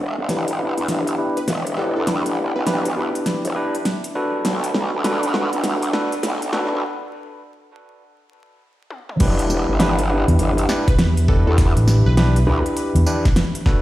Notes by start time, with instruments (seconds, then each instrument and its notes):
Already playing: wobble bass E1, ambient pad D4 G4 A4 B5, analog synth pad B4 E5 G5 D6
0.01 ambient pad E5
0.18 wobble bass G1
0.29 tine electric piano D4 E4 G4 B4, snare, closed hi-hat
0.48 closed hi-hat
0.59 tine electric piano D4 E4 G4 B4
0.77 wobble bass E2, closed hi-hat
0.88 wobble bass G1, snare, closed hi-hat
1.07 closed hi-hat
1.18 tine electric piano D4 E4 G4 B4
1.37 digital synth lead B4, closed hi-hat
1.48 wobble bass E1, digital synth lead B4, snare, closed hi-hat
1.67 closed hi-hat
1.77 tine electric piano D4 E4 G4 B4, digital synth lead A4
1.96 wobble bass E2, digital synth lead A4
2.07 snare, closed hi-hat
2.26 wobble bass A1, closed hi-hat
2.56 wobble bass B1, digital synth lead B4
2.67 tine electric piano D4 E4 G4 B4, digital synth lead B4, snare, closed hi-hat
2.85 closed hi-hat
2.96 wobble bass D2, tine electric piano D4 E4 G4 B4
3.15 closed hi-hat
3.26 snare, closed hi-hat
3.45 wobble bass E1, closed hi-hat
3.56 tine electric piano D4 E4 G4 B4
3.75 closed hi-hat
3.85 snare, closed hi-hat
4.04 closed hi-hat
4.15 tine electric piano D4 F#4 A4 B4
4.45 wobble bass B1, ambient pad D4, analog synth pad F#5 A5, snare, closed hi-hat
4.64 ambient pad F#5, closed hi-hat
4.74 ambient pad A4, snare
4.93 wobble bass D2
5.04 tine electric piano D4 F#4 A4 B4, snare, closed hi-hat
5.23 closed hi-hat
5.34 tine electric piano D4 F#4 A4 B4, snare
5.53 wobble bass B1, closed hi-hat
5.64 wobble bass D2, snare, closed hi-hat
5.82 closed hi-hat
5.93 tine electric piano D4 F#4 A4 B4, snare
6.12 closed hi-hat
6.23 wobble bass B1, snare, closed hi-hat
6.42 closed hi-hat
6.53 tine electric piano D4 F#4 A4 B4, snare
6.72 wobble bass B1
8.90 high tom
9.09 mid tom
9.20 wobble bass E1, tine electric piano D4 E4 G4 B4, kick, closed hi-hat, crash
9.39 closed hi-hat
9.47 ambient pad G4, tambourine
9.54 ambient pad E5
9.65 ambient pad B5
9.69 wobble bass G1
9.80 tine electric piano D4 E4 G4 B4, snare, closed hi-hat
9.99 closed hi-hat
10.09 tine electric piano D4 E4 G4 B4
10.28 fingered electric bass E2, closed hi-hat
10.39 wobble bass G1, closed hi-hat
10.58 closed hi-hat
10.69 tine electric piano D4 E4 G4 B4, snare, tambourine
10.88 digital synth lead B4, kick, closed hi-hat
10.98 fingered electric bass E2, digital synth lead B4, snare, closed hi-hat
11.17 closed hi-hat
11.28 tine electric piano D4 E4 G4 B4, digital synth lead A4, kick
11.47 wobble bass E2, digital synth lead A4
11.58 kick, snare, closed hi-hat
11.77 fingered electric bass A1, closed hi-hat
11.88 snare, tambourine
12.06 fingered electric bass B1, digital synth lead B4
12.17 tine electric piano D4 E4 G4 B4, digital synth lead B4, snare, closed hi-hat
12.36 closed hi-hat
12.47 wobble bass D2, tine electric piano D4 E4 G4 B4
12.66 closed hi-hat
12.77 closed hi-hat
12.95 fingered electric bass E2, closed hi-hat
13.06 tine electric piano D4 E4 G4 B4, tambourine
13.25 kick, snare, closed hi-hat
13.36 snare, closed hi-hat
13.55 closed hi-hat
13.66 tine electric piano D4 F#4 A4 B4, kick, snare